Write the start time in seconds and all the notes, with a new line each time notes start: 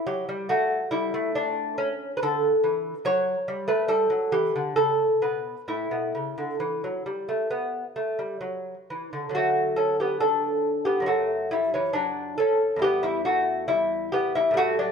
0.07 F#3 G4
0.29 G3
0.49 A3 F#4
0.91 G3 E4
1.14 A3
1.35 D4
1.78 C#4
2.17 B4
2.23 D3 A4
2.64 E3
3.05 F#3 C#5
3.48 G3
3.68 A3 B4
3.88 G3 A4
4.10 F#3
4.32 E3 G4
4.56 D3
4.76 C#3 A4
5.22 B2 B4
5.68 A2 E4
5.91 B2
6.15 C#3
6.38 D3
6.60 E3
6.84 F#3
7.06 G3
7.29 A3
7.50 B3
7.96 A3
8.19 G3
8.41 F#3
8.90 E3
9.13 D3
9.29 D3 F#3
9.35 A3 F#4
9.76 C#4 A4
10.00 B3 G4
10.20 D4 A4
10.85 B3 G4
11.00 F#2 F#3
11.06 A3 F#4
11.51 G3 E4
11.74 E3 C#4
11.93 F#3 D4
12.38 C#4 A4
12.76 E2 G3
12.82 B3 G4
13.03 G3 E4
13.25 A3 F#4
13.68 G3 E4
14.12 B3 G4
14.35 G3 E4
14.51 A2 G3
14.57 A3 F#4
14.79 F#3 D4